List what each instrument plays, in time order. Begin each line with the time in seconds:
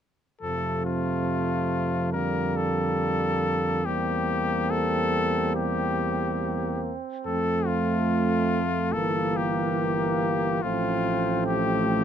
0.41 tuba F2, trombone C3, french horn F3, flugelhorn A3, trumpet A4
0.85 trumpet F4
2.13 trombone D3, french horn G3, flugelhorn A#3, trumpet A#4
2.56 trumpet A4
3.84 tuba E2, trombone G3, french horn A#3, flugelhorn C4, trumpet G4
4.70 trumpet A4
5.55 trumpet G4
7.25 tuba F2, trombone A3, french horn A3, trumpet A4
7.66 trumpet F4
8.92 tuba G1, trombone E3, french horn A#3, flugelhorn A#3, trumpet A4
9.36 trumpet G4
10.62 tuba A1, trombone F3, french horn A3, flugelhorn C4, trumpet F4
11.46 trumpet G4